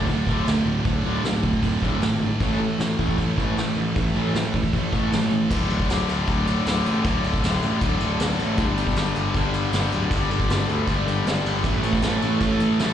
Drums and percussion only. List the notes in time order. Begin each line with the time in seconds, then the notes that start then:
0.07 kick, open hi-hat
0.27 kick
0.47 snare, open hi-hat
0.85 kick, open hi-hat
1.24 snare, open hi-hat
1.43 kick
1.53 kick
1.63 kick, open hi-hat
1.82 kick
2.02 snare, open hi-hat
2.40 kick, open hi-hat
2.79 snare, open hi-hat
2.99 kick
3.09 kick
3.18 kick, open hi-hat
3.38 kick
3.57 snare, open hi-hat
3.96 kick, open hi-hat
4.35 snare, open hi-hat
4.54 kick
4.64 kick
4.73 kick, open hi-hat
4.93 kick
5.12 snare, open hi-hat
5.51 kick, crash
5.70 crash
5.80 kick
5.90 snare, crash
6.09 crash
6.28 kick, crash
6.47 crash
6.66 snare, crash
6.86 crash
7.04 kick, crash
7.24 crash
7.34 kick
7.44 snare, crash
7.62 crash
7.81 kick, crash
8.00 crash
8.20 snare, crash
8.39 crash
8.57 kick, crash
8.77 crash
8.87 kick
8.96 snare, crash
9.16 crash
9.34 kick, crash
9.54 crash
9.73 snare, crash
9.92 crash
10.11 kick, crash
10.31 crash
10.40 kick
10.50 snare, crash
10.69 crash
10.88 kick, crash
11.08 crash
11.26 snare, crash
11.46 crash
11.64 kick, crash
11.83 crash
11.93 kick
12.02 snare, crash
12.22 crash
12.41 kick, crash
12.60 crash
12.79 snare, crash